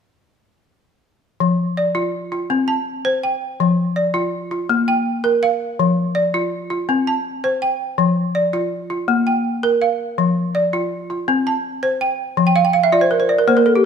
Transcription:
1.40 F3
1.77 D5
1.95 F4
2.32 F4
2.50 C4
2.68 A5
3.05 C5
3.23 G5
3.60 F3
3.96 D5
4.14 F4
4.51 F4
4.69 A#3
4.88 G5
5.24 A#4
5.43 F5
5.79 F3
6.15 D5
6.34 F4
6.70 F4
6.89 C4
7.07 A5
7.44 C5
7.62 G5
7.98 F3
8.35 D5
8.53 F4
8.90 F4
9.08 A#3
9.27 G5
9.63 A#4
9.82 F5
10.18 F3
10.55 D5
10.73 F4
11.10 F4
11.28 C4
11.47 A5
11.83 C5
12.01 G5
12.37 F3
12.47 G5
12.56 F5
12.65 G5
12.73 F5
12.84 E5
12.92 F4 D5
13.01 C5
13.11 A#4
13.20 C5
13.29 D5
13.38 A#4
13.48 A#3 C5
13.57 A#4
13.66 A4
13.75 G4

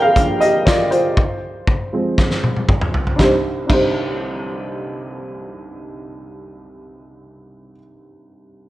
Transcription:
Already playing: F3 A#3 D4 F4 A#4 D5 F5 G5
0.02 G#4 F5
0.16 F3 A#3 D4, kick, closed hi-hat
0.40 G4 D#5, closed hi-hat
0.65 F4 D5, kick, snare, closed hi-hat
0.91 F4 C5, closed hi-hat
1.17 kick
1.67 kick
1.93 F3 G#3 C4
2.18 kick, snare
2.31 snare
2.44 high tom
2.57 high tom
2.69 kick, mid tom
2.81 mid tom
2.94 floor tom
3.07 floor tom
3.16 C2 D4 D#4, kick, snare
3.20 G4 C5
3.66 C2 D4 D#4, kick, crash
3.71 G4 C5

